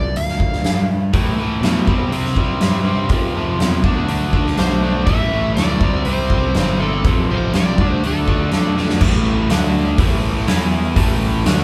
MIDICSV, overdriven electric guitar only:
0, 0, Header, 1, 2, 480
1, 0, Start_track
1, 0, Key_signature, 0, "minor"
1, 0, Tempo, 491400
1, 1113, Time_signature, 4, 2, 24, 8
1, 11369, End_track
2, 0, Start_track
2, 0, Title_t, "Overdriven electric guitar"
2, 0, Program_c, 0, 29
2, 1112, Note_on_c, 0, 45, 91
2, 1113, Note_on_c, 0, 52, 82
2, 1117, Note_on_c, 0, 57, 88
2, 1345, Note_off_c, 0, 45, 0
2, 1355, Note_off_c, 0, 52, 0
2, 1357, Note_on_c, 0, 45, 69
2, 1359, Note_off_c, 0, 57, 0
2, 1367, Note_on_c, 0, 52, 72
2, 1370, Note_on_c, 0, 57, 73
2, 1586, Note_off_c, 0, 45, 0
2, 1590, Note_off_c, 0, 57, 0
2, 1592, Note_off_c, 0, 52, 0
2, 1597, Note_on_c, 0, 45, 76
2, 1602, Note_on_c, 0, 57, 81
2, 1604, Note_on_c, 0, 52, 85
2, 1821, Note_off_c, 0, 45, 0
2, 1823, Note_off_c, 0, 57, 0
2, 1824, Note_off_c, 0, 52, 0
2, 1837, Note_on_c, 0, 48, 88
2, 1840, Note_on_c, 0, 55, 86
2, 1844, Note_on_c, 0, 60, 100
2, 2063, Note_off_c, 0, 48, 0
2, 2069, Note_off_c, 0, 60, 0
2, 2070, Note_off_c, 0, 55, 0
2, 2075, Note_on_c, 0, 48, 94
2, 2081, Note_on_c, 0, 60, 98
2, 2082, Note_on_c, 0, 55, 89
2, 2316, Note_off_c, 0, 48, 0
2, 2321, Note_off_c, 0, 55, 0
2, 2322, Note_off_c, 0, 60, 0
2, 2328, Note_on_c, 0, 48, 77
2, 2333, Note_on_c, 0, 55, 89
2, 2334, Note_on_c, 0, 60, 81
2, 2537, Note_off_c, 0, 48, 0
2, 2547, Note_off_c, 0, 55, 0
2, 2548, Note_on_c, 0, 48, 64
2, 2550, Note_off_c, 0, 60, 0
2, 2558, Note_on_c, 0, 55, 79
2, 2562, Note_on_c, 0, 60, 75
2, 2781, Note_off_c, 0, 48, 0
2, 2787, Note_off_c, 0, 60, 0
2, 2788, Note_off_c, 0, 55, 0
2, 2793, Note_on_c, 0, 48, 64
2, 2799, Note_on_c, 0, 60, 77
2, 2800, Note_on_c, 0, 55, 72
2, 3019, Note_off_c, 0, 48, 0
2, 3022, Note_off_c, 0, 60, 0
2, 3023, Note_off_c, 0, 55, 0
2, 3039, Note_on_c, 0, 41, 81
2, 3043, Note_on_c, 0, 48, 94
2, 3044, Note_on_c, 0, 53, 102
2, 3271, Note_off_c, 0, 41, 0
2, 3277, Note_off_c, 0, 48, 0
2, 3281, Note_off_c, 0, 53, 0
2, 3283, Note_on_c, 0, 41, 73
2, 3288, Note_on_c, 0, 48, 76
2, 3293, Note_on_c, 0, 53, 78
2, 3500, Note_off_c, 0, 41, 0
2, 3507, Note_off_c, 0, 48, 0
2, 3510, Note_off_c, 0, 53, 0
2, 3512, Note_on_c, 0, 41, 81
2, 3519, Note_on_c, 0, 48, 78
2, 3521, Note_on_c, 0, 53, 83
2, 3739, Note_off_c, 0, 41, 0
2, 3743, Note_off_c, 0, 48, 0
2, 3744, Note_off_c, 0, 53, 0
2, 3751, Note_on_c, 0, 50, 84
2, 3756, Note_on_c, 0, 57, 93
2, 3762, Note_on_c, 0, 62, 102
2, 3977, Note_off_c, 0, 50, 0
2, 3984, Note_off_c, 0, 57, 0
2, 3988, Note_off_c, 0, 62, 0
2, 3989, Note_on_c, 0, 50, 97
2, 3996, Note_on_c, 0, 57, 104
2, 3999, Note_on_c, 0, 62, 106
2, 4222, Note_off_c, 0, 50, 0
2, 4227, Note_off_c, 0, 57, 0
2, 4231, Note_off_c, 0, 62, 0
2, 4233, Note_on_c, 0, 50, 82
2, 4239, Note_on_c, 0, 57, 83
2, 4243, Note_on_c, 0, 62, 95
2, 4465, Note_off_c, 0, 50, 0
2, 4469, Note_off_c, 0, 57, 0
2, 4471, Note_off_c, 0, 62, 0
2, 4477, Note_on_c, 0, 50, 81
2, 4481, Note_on_c, 0, 57, 77
2, 4483, Note_on_c, 0, 62, 76
2, 4706, Note_off_c, 0, 50, 0
2, 4713, Note_off_c, 0, 57, 0
2, 4718, Note_on_c, 0, 50, 71
2, 4720, Note_off_c, 0, 62, 0
2, 4725, Note_on_c, 0, 57, 80
2, 4732, Note_on_c, 0, 62, 78
2, 4943, Note_off_c, 0, 50, 0
2, 4947, Note_off_c, 0, 57, 0
2, 4950, Note_off_c, 0, 62, 0
2, 4970, Note_on_c, 0, 45, 79
2, 4975, Note_on_c, 0, 52, 94
2, 4981, Note_on_c, 0, 57, 94
2, 5188, Note_off_c, 0, 45, 0
2, 5193, Note_off_c, 0, 52, 0
2, 5198, Note_off_c, 0, 57, 0
2, 5200, Note_on_c, 0, 45, 69
2, 5205, Note_on_c, 0, 52, 80
2, 5210, Note_on_c, 0, 57, 85
2, 5439, Note_off_c, 0, 45, 0
2, 5442, Note_off_c, 0, 52, 0
2, 5451, Note_on_c, 0, 45, 80
2, 5452, Note_off_c, 0, 57, 0
2, 5454, Note_on_c, 0, 52, 80
2, 5463, Note_on_c, 0, 57, 85
2, 5670, Note_off_c, 0, 45, 0
2, 5672, Note_off_c, 0, 52, 0
2, 5676, Note_off_c, 0, 57, 0
2, 5690, Note_on_c, 0, 48, 85
2, 5693, Note_on_c, 0, 55, 90
2, 5695, Note_on_c, 0, 60, 84
2, 5921, Note_off_c, 0, 48, 0
2, 5924, Note_off_c, 0, 55, 0
2, 5931, Note_off_c, 0, 60, 0
2, 5932, Note_on_c, 0, 48, 88
2, 5936, Note_on_c, 0, 55, 89
2, 5943, Note_on_c, 0, 60, 101
2, 6169, Note_off_c, 0, 48, 0
2, 6171, Note_off_c, 0, 55, 0
2, 6177, Note_off_c, 0, 60, 0
2, 6181, Note_on_c, 0, 48, 80
2, 6183, Note_on_c, 0, 55, 88
2, 6189, Note_on_c, 0, 60, 87
2, 6406, Note_off_c, 0, 48, 0
2, 6409, Note_off_c, 0, 55, 0
2, 6416, Note_off_c, 0, 60, 0
2, 6418, Note_on_c, 0, 48, 69
2, 6421, Note_on_c, 0, 55, 69
2, 6428, Note_on_c, 0, 60, 84
2, 6645, Note_off_c, 0, 48, 0
2, 6645, Note_off_c, 0, 55, 0
2, 6652, Note_off_c, 0, 60, 0
2, 6656, Note_on_c, 0, 48, 76
2, 6657, Note_on_c, 0, 55, 81
2, 6664, Note_on_c, 0, 60, 74
2, 6873, Note_off_c, 0, 48, 0
2, 6874, Note_off_c, 0, 55, 0
2, 6877, Note_off_c, 0, 60, 0
2, 6898, Note_on_c, 0, 41, 89
2, 6906, Note_on_c, 0, 48, 93
2, 6909, Note_on_c, 0, 53, 92
2, 7116, Note_off_c, 0, 41, 0
2, 7128, Note_off_c, 0, 48, 0
2, 7128, Note_off_c, 0, 53, 0
2, 7128, Note_on_c, 0, 41, 78
2, 7139, Note_on_c, 0, 53, 82
2, 7140, Note_on_c, 0, 48, 75
2, 7358, Note_off_c, 0, 41, 0
2, 7364, Note_off_c, 0, 48, 0
2, 7369, Note_off_c, 0, 53, 0
2, 7369, Note_on_c, 0, 41, 82
2, 7375, Note_on_c, 0, 48, 85
2, 7381, Note_on_c, 0, 53, 82
2, 7590, Note_off_c, 0, 41, 0
2, 7593, Note_off_c, 0, 48, 0
2, 7596, Note_off_c, 0, 53, 0
2, 7623, Note_on_c, 0, 50, 88
2, 7626, Note_on_c, 0, 57, 86
2, 7626, Note_on_c, 0, 62, 95
2, 7841, Note_off_c, 0, 50, 0
2, 7849, Note_off_c, 0, 62, 0
2, 7850, Note_off_c, 0, 57, 0
2, 7853, Note_on_c, 0, 50, 89
2, 7861, Note_on_c, 0, 57, 88
2, 7861, Note_on_c, 0, 62, 95
2, 8080, Note_off_c, 0, 50, 0
2, 8084, Note_off_c, 0, 57, 0
2, 8085, Note_off_c, 0, 62, 0
2, 8092, Note_on_c, 0, 50, 74
2, 8095, Note_on_c, 0, 57, 80
2, 8096, Note_on_c, 0, 62, 88
2, 8321, Note_off_c, 0, 50, 0
2, 8326, Note_off_c, 0, 57, 0
2, 8333, Note_on_c, 0, 50, 64
2, 8334, Note_off_c, 0, 62, 0
2, 8337, Note_on_c, 0, 57, 78
2, 8346, Note_on_c, 0, 62, 77
2, 8558, Note_off_c, 0, 50, 0
2, 8565, Note_off_c, 0, 57, 0
2, 8570, Note_on_c, 0, 50, 72
2, 8574, Note_off_c, 0, 62, 0
2, 8577, Note_on_c, 0, 57, 80
2, 8586, Note_on_c, 0, 62, 69
2, 8790, Note_off_c, 0, 50, 0
2, 8793, Note_off_c, 0, 57, 0
2, 8798, Note_off_c, 0, 62, 0
2, 8812, Note_on_c, 0, 45, 97
2, 8816, Note_on_c, 0, 52, 95
2, 8825, Note_on_c, 0, 57, 100
2, 9275, Note_off_c, 0, 57, 0
2, 9277, Note_off_c, 0, 45, 0
2, 9280, Note_off_c, 0, 52, 0
2, 9282, Note_on_c, 0, 50, 97
2, 9287, Note_on_c, 0, 57, 102
2, 9289, Note_on_c, 0, 62, 98
2, 9752, Note_off_c, 0, 50, 0
2, 9754, Note_off_c, 0, 57, 0
2, 9756, Note_off_c, 0, 62, 0
2, 9759, Note_on_c, 0, 52, 106
2, 9760, Note_on_c, 0, 45, 87
2, 9768, Note_on_c, 0, 57, 104
2, 10223, Note_off_c, 0, 52, 0
2, 10231, Note_off_c, 0, 45, 0
2, 10234, Note_off_c, 0, 57, 0
2, 10235, Note_on_c, 0, 52, 88
2, 10236, Note_on_c, 0, 59, 93
2, 10240, Note_on_c, 0, 64, 88
2, 10700, Note_off_c, 0, 52, 0
2, 10707, Note_off_c, 0, 59, 0
2, 10707, Note_on_c, 0, 45, 89
2, 10709, Note_off_c, 0, 64, 0
2, 10711, Note_on_c, 0, 52, 100
2, 10722, Note_on_c, 0, 57, 112
2, 11182, Note_off_c, 0, 45, 0
2, 11184, Note_off_c, 0, 52, 0
2, 11186, Note_off_c, 0, 57, 0
2, 11188, Note_on_c, 0, 50, 98
2, 11198, Note_on_c, 0, 57, 107
2, 11200, Note_on_c, 0, 62, 108
2, 11369, Note_off_c, 0, 50, 0
2, 11369, Note_off_c, 0, 57, 0
2, 11369, Note_off_c, 0, 62, 0
2, 11369, End_track
0, 0, End_of_file